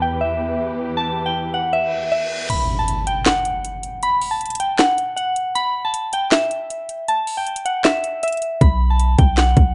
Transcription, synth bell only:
0.02 G5
0.21 E5
0.97 A5
1.26 G5
1.54 F#5
1.73 E5
2.12 E5
2.50 B5
2.79 A5
3.07 G5
3.26 F#5
4.03 B5
4.31 A5
4.60 G5
4.79 F#5
5.16 F#5
5.55 B5
5.85 A5
6.13 G5
6.32 E5
7.08 A5
7.37 G5
7.65 F#5
7.84 E5
8.23 E5
8.61 B5
8.90 A5
9.18 G5
9.38 F#5

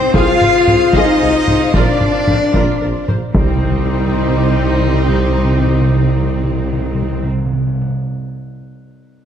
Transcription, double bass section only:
0.15 C2
0.68 C2
0.94 C2
1.21 C2
1.48 C2
1.74 A#1
2.27 A#1
2.55 A#1
2.81 A#1
3.08 A#1
3.35 C2

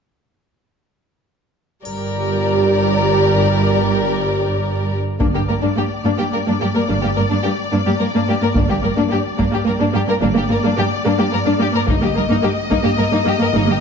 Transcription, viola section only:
1.85 G3 G4
5.20 A#3
5.34 A#3
5.48 A#3
5.63 A#3
5.76 A#3
6.05 A#3
6.18 A#3
6.33 A#3
6.46 A#3
6.61 A#3
6.75 A#3
6.89 A#3
7.03 A#3
7.16 A#3
7.30 A#3
7.45 A#3
7.72 A#3
7.87 A#3
8.01 A#3
8.15 A#3
8.28 A#3
8.42 A#3
8.55 A#3
8.70 A#3
8.83 A#3
8.97 A#3
9.10 A#3
9.38 A#3
9.51 A#3
9.65 A#3
9.80 A#3
9.93 A#3
10.08 A#3
10.21 A#3
10.35 A#3
10.49 A#3
10.63 A#3
10.77 A#3
11.05 A#3
11.18 A#3
11.32 A#3
11.46 A#3
11.59 A#3
11.73 A#3
11.87 A#3
12.01 A#3
12.15 A#3
12.28 A#3
12.43 A#3
12.71 A#3
12.84 A#3
12.98 A#3
13.12 A#3
13.25 A#3
13.39 A#3
13.53 A#3
13.66 A#3

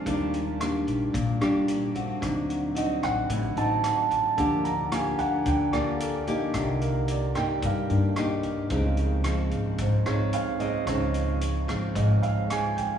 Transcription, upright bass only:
0.06 D#2
0.87 A#1
1.14 A#1
1.41 A#1
2.22 D2
3.03 A1
3.29 A1
3.56 A1
4.38 D2
5.19 D2
5.46 D2
5.73 D2
6.54 C2
7.35 G2
7.62 G2
7.90 G2
8.71 C#2
9.51 G#1
9.78 G#1
10.06 G#1
10.87 C#2
11.68 G#1
11.95 G#1
12.22 G#1

